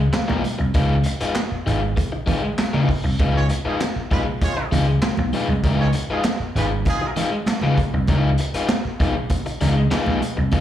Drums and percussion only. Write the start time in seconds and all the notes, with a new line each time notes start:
0.13 snare, clap, closed hi-hat, high conga
0.30 high conga
0.44 closed hi-hat, high conga
0.74 kick, closed hi-hat, muted conga
1.03 closed hi-hat
1.20 closed hi-hat
1.35 snare, clap, closed hi-hat, high conga
1.67 closed hi-hat
1.97 kick, closed hi-hat, muted conga
2.27 kick, closed hi-hat, muted conga, low conga
2.58 snare, clap, closed hi-hat, high conga
2.74 high conga
2.89 kick, open hi-hat
3.20 kick, closed hi-hat, muted conga
3.49 closed hi-hat
3.80 snare, clap, closed hi-hat, high conga
4.11 kick, closed hi-hat
4.41 kick, closed hi-hat, muted conga
4.72 closed hi-hat, low conga
5.02 snare, clap, closed hi-hat, high conga
5.17 high conga
5.32 closed hi-hat, high conga
5.63 kick, closed hi-hat, muted conga
5.93 closed hi-hat
6.24 snare, clap, closed hi-hat, high conga
6.56 closed hi-hat
6.85 kick, closed hi-hat, muted conga
7.16 closed hi-hat, muted conga, low conga
7.46 snare, clap, closed hi-hat, high conga
7.61 high conga
7.77 kick, closed hi-hat, high conga
8.07 kick, closed hi-hat, muted conga
8.38 closed hi-hat
8.54 closed hi-hat
8.68 snare, clap, closed hi-hat, high conga
9.00 kick, closed hi-hat
9.30 kick, closed hi-hat, muted conga
9.46 closed hi-hat
9.61 closed hi-hat, low conga
9.91 snare, clap, closed hi-hat, high conga
10.06 high conga
10.22 closed hi-hat, high conga
10.52 kick, closed hi-hat, muted conga